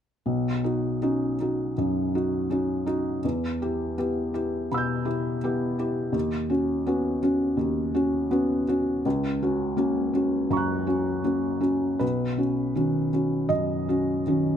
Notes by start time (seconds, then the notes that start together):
0.26 B1
0.64 D#4 F#4
1.02 C#4 D#4 F#4
1.40 D#4 F#4
1.78 F#2
2.15 D#4 F#4
2.50 C#4 D#4 F#4
2.86 D#4 F#4
3.25 E2
3.62 E4 G4
3.98 B3 E4 G4
4.34 E4 G4
4.72 B2 B5 E6
4.78 G6
5.05 E4 G4
5.44 B3 E4 G4
5.79 E4 G4
6.12 D#2
6.50 C#4 F#4
6.86 B3 C#4 F#4
7.22 C#4 F#4
7.57 D#2
7.95 C#4 F#4
8.31 B3 C#4 F#4
8.68 C#4 F#4
9.06 C#2
9.42 C#4 F#4
9.77 A#3 C#4 F#4
10.13 C#4 F#4
10.50 F#2 A#5 C#6
10.57 F#6
10.87 C#4 F#4
11.24 A#3 C#4 F#4
11.61 C#4 F#4
11.99 B1 B4
12.37 C#4 F#4
12.75 D#3 C#4 F#4
13.13 C#4 F#4
13.49 F#2 D#5
13.89 C#4 F#4
14.27 D#3 C#4 F#4